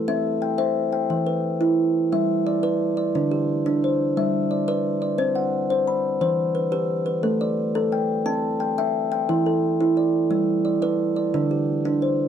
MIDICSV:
0, 0, Header, 1, 2, 480
1, 0, Start_track
1, 0, Key_signature, 1, "major"
1, 0, Tempo, 341297
1, 121, Time_signature, 12, 3, 24, 8
1, 17272, End_track
2, 0, Start_track
2, 0, Title_t, "Kalimba"
2, 0, Program_c, 0, 108
2, 112, Note_on_c, 0, 60, 85
2, 112, Note_on_c, 0, 76, 72
2, 588, Note_on_c, 0, 79, 65
2, 595, Note_off_c, 0, 60, 0
2, 802, Note_off_c, 0, 76, 0
2, 819, Note_on_c, 0, 76, 78
2, 820, Note_on_c, 0, 72, 68
2, 1285, Note_off_c, 0, 79, 0
2, 1302, Note_on_c, 0, 79, 66
2, 1308, Note_off_c, 0, 76, 0
2, 1548, Note_off_c, 0, 72, 0
2, 1548, Note_on_c, 0, 52, 80
2, 1780, Note_on_c, 0, 71, 63
2, 1789, Note_off_c, 0, 79, 0
2, 2032, Note_off_c, 0, 52, 0
2, 2260, Note_on_c, 0, 64, 82
2, 2507, Note_off_c, 0, 71, 0
2, 2747, Note_off_c, 0, 64, 0
2, 2987, Note_on_c, 0, 55, 80
2, 2991, Note_on_c, 0, 76, 71
2, 3468, Note_on_c, 0, 74, 68
2, 3470, Note_off_c, 0, 55, 0
2, 3682, Note_off_c, 0, 74, 0
2, 3699, Note_on_c, 0, 74, 66
2, 3700, Note_on_c, 0, 71, 81
2, 3711, Note_off_c, 0, 76, 0
2, 4162, Note_off_c, 0, 74, 0
2, 4179, Note_on_c, 0, 74, 66
2, 4185, Note_off_c, 0, 71, 0
2, 4431, Note_on_c, 0, 50, 81
2, 4436, Note_on_c, 0, 62, 72
2, 4662, Note_on_c, 0, 67, 66
2, 4664, Note_off_c, 0, 74, 0
2, 4910, Note_off_c, 0, 50, 0
2, 5131, Note_off_c, 0, 62, 0
2, 5148, Note_on_c, 0, 62, 89
2, 5385, Note_off_c, 0, 67, 0
2, 5401, Note_on_c, 0, 72, 65
2, 5628, Note_off_c, 0, 62, 0
2, 5867, Note_on_c, 0, 55, 84
2, 5870, Note_on_c, 0, 76, 72
2, 6113, Note_off_c, 0, 72, 0
2, 6341, Note_on_c, 0, 74, 65
2, 6347, Note_off_c, 0, 55, 0
2, 6568, Note_off_c, 0, 74, 0
2, 6581, Note_on_c, 0, 71, 81
2, 6585, Note_on_c, 0, 74, 70
2, 6587, Note_off_c, 0, 76, 0
2, 7041, Note_off_c, 0, 74, 0
2, 7058, Note_on_c, 0, 74, 66
2, 7063, Note_off_c, 0, 71, 0
2, 7288, Note_on_c, 0, 72, 73
2, 7293, Note_on_c, 0, 60, 89
2, 7531, Note_on_c, 0, 78, 68
2, 7541, Note_off_c, 0, 74, 0
2, 7778, Note_off_c, 0, 60, 0
2, 8004, Note_off_c, 0, 72, 0
2, 8021, Note_on_c, 0, 72, 82
2, 8257, Note_off_c, 0, 78, 0
2, 8261, Note_on_c, 0, 83, 72
2, 8502, Note_off_c, 0, 72, 0
2, 8735, Note_on_c, 0, 52, 91
2, 8740, Note_on_c, 0, 72, 72
2, 8982, Note_off_c, 0, 83, 0
2, 9210, Note_on_c, 0, 71, 69
2, 9219, Note_off_c, 0, 52, 0
2, 9436, Note_off_c, 0, 71, 0
2, 9450, Note_on_c, 0, 67, 79
2, 9453, Note_on_c, 0, 71, 69
2, 9461, Note_off_c, 0, 72, 0
2, 9910, Note_off_c, 0, 71, 0
2, 9927, Note_on_c, 0, 71, 69
2, 9936, Note_off_c, 0, 67, 0
2, 10169, Note_on_c, 0, 69, 69
2, 10170, Note_on_c, 0, 57, 84
2, 10414, Note_off_c, 0, 71, 0
2, 10420, Note_on_c, 0, 74, 70
2, 10656, Note_off_c, 0, 57, 0
2, 10886, Note_off_c, 0, 69, 0
2, 10903, Note_on_c, 0, 69, 86
2, 11141, Note_off_c, 0, 74, 0
2, 11144, Note_on_c, 0, 79, 71
2, 11382, Note_off_c, 0, 69, 0
2, 11614, Note_on_c, 0, 60, 89
2, 11614, Note_on_c, 0, 81, 73
2, 11863, Note_off_c, 0, 79, 0
2, 12097, Note_on_c, 0, 79, 67
2, 12098, Note_off_c, 0, 60, 0
2, 12337, Note_off_c, 0, 79, 0
2, 12338, Note_off_c, 0, 81, 0
2, 12350, Note_on_c, 0, 76, 83
2, 12354, Note_on_c, 0, 79, 64
2, 12805, Note_off_c, 0, 79, 0
2, 12821, Note_on_c, 0, 79, 70
2, 12826, Note_off_c, 0, 76, 0
2, 13067, Note_on_c, 0, 52, 82
2, 13067, Note_on_c, 0, 64, 68
2, 13303, Note_off_c, 0, 79, 0
2, 13310, Note_on_c, 0, 69, 67
2, 13546, Note_off_c, 0, 52, 0
2, 13773, Note_off_c, 0, 64, 0
2, 13790, Note_on_c, 0, 64, 85
2, 14023, Note_on_c, 0, 74, 63
2, 14028, Note_off_c, 0, 69, 0
2, 14268, Note_off_c, 0, 64, 0
2, 14495, Note_on_c, 0, 55, 87
2, 14746, Note_off_c, 0, 74, 0
2, 14976, Note_on_c, 0, 74, 66
2, 14982, Note_off_c, 0, 55, 0
2, 15201, Note_off_c, 0, 74, 0
2, 15218, Note_on_c, 0, 74, 64
2, 15222, Note_on_c, 0, 71, 81
2, 15685, Note_off_c, 0, 74, 0
2, 15702, Note_on_c, 0, 74, 64
2, 15707, Note_off_c, 0, 71, 0
2, 15950, Note_on_c, 0, 50, 88
2, 15950, Note_on_c, 0, 62, 67
2, 16187, Note_on_c, 0, 67, 64
2, 16188, Note_off_c, 0, 74, 0
2, 16433, Note_off_c, 0, 50, 0
2, 16654, Note_off_c, 0, 62, 0
2, 16670, Note_on_c, 0, 62, 85
2, 16908, Note_on_c, 0, 72, 68
2, 16913, Note_off_c, 0, 67, 0
2, 17155, Note_off_c, 0, 62, 0
2, 17272, Note_off_c, 0, 72, 0
2, 17272, End_track
0, 0, End_of_file